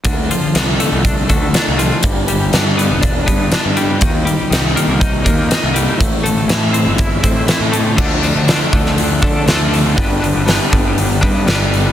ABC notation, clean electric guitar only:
X:1
M:4/4
L:1/8
Q:1/4=121
K:Ddor
V:1 name="Clean electric guitar"
D, F, D, A, D A, D F, | G,, G, D, B, D B, D G, | _E, G, E, _B, _E B, E G, | A,, A, E, C E C E A, |
[D,F,A,D] [F,A,D] [D,F,A,D] [F,A,D]2 [F,A,D] [D,F,A,D]2 | [G,,D,G,B,D] [G,B,D] [D,G,B,D] [G,B,D]2 [G,B,D] [G,,D,G,B,D]2 |]